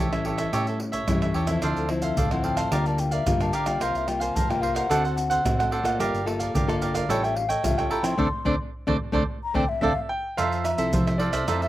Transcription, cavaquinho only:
Already playing: G4
0.00 A4 C#5 E5
0.12 A4 C#5 E5
0.25 G4 A4 C#5 E5
0.37 A4 C#5 E5
0.53 G4 A4 C#5 E5
0.67 A4 C#5 E5
0.80 muted cavaquinho stroke
0.92 A4 C#5 E5
1.22 A4 C#5 E5
1.34 G4 A4 C#5 E5
1.47 A4 C#5 E5
1.62 D4 A4 C5 F5
1.90 muted cavaquinho stroke
2.02 A4 C5 F5
2.17 D4 A4 C5 F5
2.31 A4 C5 F5
2.43 D4 A4 C5 F5
2.57 A4 C5 F5
2.71 G4 A#4 D5 F5
2.86 A#4 D5 F5
2.98 muted cavaquinho stroke
3.11 A#4 D5 F5
3.40 A#4 D5 F5
3.53 G4 A#4 D5 F5
3.66 A#4 D5 F5
3.80 F4 A#4 C5 F5
4.07 muted cavaquinho stroke
4.20 A#4 C5 F5
4.35 F4 A#4 C5 F5
4.50 A#4 C5 F5
4.62 F4 A#4 C5 F5
4.75 A#4 C5 F5
4.90 D4 A4 C5 F#5
5.04 C5 F#5
5.17 muted cavaquinho stroke
5.30 A4 C5 F#5
5.59 A4 C5 F#5
5.71 D4 A4 C5 F#5
5.85 A4 C5 F#5
6.00 G4 A#4 D5 F5
6.26 muted cavaquinho stroke
6.39 A#4 D5 F5
6.55 G4 A#4 D5 F5
6.69 A#4 D5 F5
6.81 G4 A#4 D5 F5
6.94 A#4 D5 F5
7.09 E4 A4 C#5 G5
7.23 A4 C#5 G5
7.36 muted cavaquinho stroke
7.49 A4 C#5 G5
7.78 A4 C#5 G5
7.90 E4 A4 C#5 G5
8.04 A4 C#5 G5
8.18 A4 C5 D5
8.46 A4 C5 D5
8.87 A4 C5 D5
9.13 A4 C5 D5
9.55 A4 C5 D5
9.83 A4 C5 D5
10.37 F4 A4 C5 E5
10.65 muted cavaquinho stroke
10.78 A4 C5 E5
10.93 F4 A4 C5 E5
11.07 A4 C5 E5
11.19 F4 A4 C5 E5
11.33 A4 C5 E5
11.48 F4 A4 C5 E5
11.62 A4 C5 E5

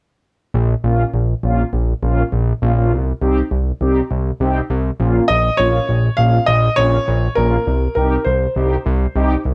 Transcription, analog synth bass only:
0.54 A#1
0.84 A#1
1.14 A#1
1.43 A#1
1.73 A#1
2.03 A#1
2.32 A#1
2.62 A#1
2.92 C2
3.22 C2
3.51 C2
3.81 C2
4.11 C2
4.40 C2
4.70 C2
5.00 A#1
5.29 A#1
5.59 A#1
5.89 A#1
6.18 A#1
6.48 A#1
6.78 A#1
7.08 A#1
7.37 A#1
7.67 C2
7.97 C2
8.26 C2
8.56 C2
8.86 C2
9.16 C2
9.45 C2

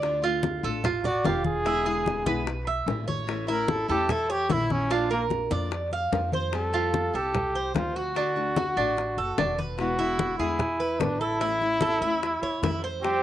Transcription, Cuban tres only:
Already playing: D5
0.24 F4
0.64 A4
0.85 F4
1.05 D5
1.25 F4
1.66 E4
1.86 G#4
2.27 B4
2.67 E5
3.08 C#5
3.48 E4
3.89 A4
4.10 E4
4.30 C#5
4.50 E4
4.91 F4
5.11 A#4
5.52 D5
5.93 F5
6.33 C5
6.74 F4
7.15 A4
7.55 C5
7.96 F#4
8.16 D4
8.57 F#4
8.77 D4
9.18 A4
9.38 D4
9.59 B4
9.99 E4
10.40 G#4
10.80 B4
11.21 A4
11.41 E4
11.82 A4
12.02 E4
12.43 C#5
12.63 E4
12.84 C5

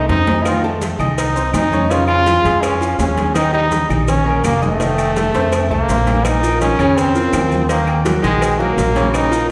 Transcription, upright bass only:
0.09 F2
0.99 C2
1.54 F2
2.45 F2
2.99 D#2
3.90 A#1
4.44 F1
5.34 F2
5.71 C2
5.88 A#1
6.79 F2
7.33 D#2
8.23 A#1
8.77 A#1

